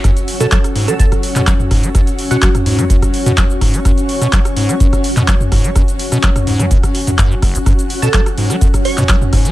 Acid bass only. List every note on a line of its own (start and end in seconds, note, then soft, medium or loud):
0.04 0.11 F#2 medium
0.41 0.47 B2 loud
0.52 0.59 F#3 loud
0.76 0.90 G#2 medium
0.88 0.94 A3 medium
0.99 1.06 F#2 medium
1.36 1.42 B2 loud
1.47 1.54 F#3 loud
1.71 1.85 G#2 medium
1.83 1.90 A3 medium
1.95 2.02 F#2 medium
2.31 2.37 B2 loud
2.42 2.49 F#3 loud
2.66 2.80 G#2 medium
2.79 2.85 A3 medium
2.90 2.97 F#2 medium
3.26 3.32 B2 loud
3.38 3.44 F#3 loud
3.61 3.75 G#2 medium
3.74 3.80 A3 medium
3.85 3.92 F#2 medium
4.22 4.28 B2 loud
4.33 4.40 F#3 loud
4.57 4.71 G#2 medium
4.69 4.75 A3 medium
4.80 4.87 F#2 medium
5.17 5.23 B2 loud
5.28 5.35 F#3 loud
5.52 5.66 G#2 medium
5.64 5.71 A3 medium
5.76 5.83 F#2 medium
6.12 6.18 B2 loud
6.23 6.30 F#3 loud
6.47 6.61 G#2 medium
6.60 6.66 A3 medium
6.71 6.78 F#2 medium
7.07 7.11 F#2 medium
7.19 7.33 F#2 medium
7.31 7.35 A2 medium
7.42 7.56 F#1 loud
7.55 7.59 F#3 loud
7.66 7.73 F#2 medium
8.02 8.09 B2 loud
8.14 8.21 F#3 loud
8.38 8.52 G#2 medium
8.50 8.56 A3 medium
8.61 8.68 F#2 medium
8.98 9.04 B2 loud
9.09 9.16 F#3 loud
9.33 9.47 G#2 medium
9.45 9.52 A3 medium